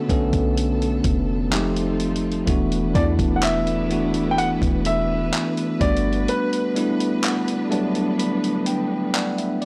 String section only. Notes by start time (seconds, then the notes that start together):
Already playing: D3 A3 B3 A4
1.52 G3 C4 D#4 F4
2.48 A3 B3 D4 E4 B4
5.81 D3 B3 D4